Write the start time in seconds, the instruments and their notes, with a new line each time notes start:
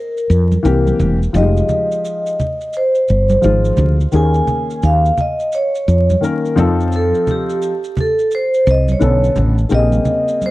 Already playing: vibraphone A#4
0.17 maracas
0.30 fretless electric bass F2, maracas
0.52 high conga, maracas
0.63 fretless electric bass C2, upright piano E3 A#3 C4 G4, maracas
0.87 high conga, maracas
0.99 fretless electric bass E1, high conga, low conga, maracas
1.23 maracas
1.33 fretless electric bass F1, upright piano F3 G3 D#4 G4, vibraphone D#5, maracas
1.41 upright piano G#3
1.57 maracas
1.69 low conga, maracas
1.92 maracas
2.05 maracas
2.26 maracas
2.40 low conga, maracas
2.61 maracas
2.73 vibraphone C5, maracas
2.95 maracas
3.08 fretless electric bass G1, maracas
3.30 high conga, maracas
3.42 fretless electric bass G#1, upright piano F3 G#3 D#4 F4, maracas
3.65 maracas
3.77 fretless electric bass D2, low conga, maracas
4.01 maracas
4.12 fretless electric bass D#2, upright piano D#3 A#3 C#4 G#4, maracas
4.16 vibraphone G#5
4.34 maracas
4.47 low conga, maracas
4.70 maracas
4.83 fretless electric bass D#2, vibraphone F5, maracas
5.05 maracas
5.17 vibraphone D#5, low conga, maracas
5.40 maracas
5.52 vibraphone C#5, maracas
5.75 maracas
5.88 fretless electric bass F2, maracas
6.10 high conga, maracas
6.21 upright piano D#3 A#3 C#4 A#4, maracas
6.45 maracas
6.56 fretless electric bass F2, upright piano F3 C4 D#4 A4, low conga, maracas
6.80 maracas
6.92 vibraphone A4, maracas
7.15 maracas
7.27 vibraphone G4, low conga, maracas
7.50 maracas
7.62 maracas
7.84 maracas
7.97 vibraphone A4, low conga, maracas
8.19 maracas
8.31 vibraphone C5, maracas
8.54 maracas
8.67 fretless electric bass C2, vibraphone D#5, maracas
8.88 vibraphone C#5, high conga, maracas
8.99 fretless electric bass B1, upright piano D3 B3 C#4 A4, maracas
9.24 maracas
9.36 fretless electric bass A1, low conga, maracas
9.58 maracas
9.69 fretless electric bass A#1, upright piano C#3 A#3 C4 G4, maracas
9.74 vibraphone D#5
9.79 upright piano G#4
9.92 high conga, maracas
10.05 low conga, maracas
10.28 maracas
10.41 high conga, maracas
10.46 vibraphone C5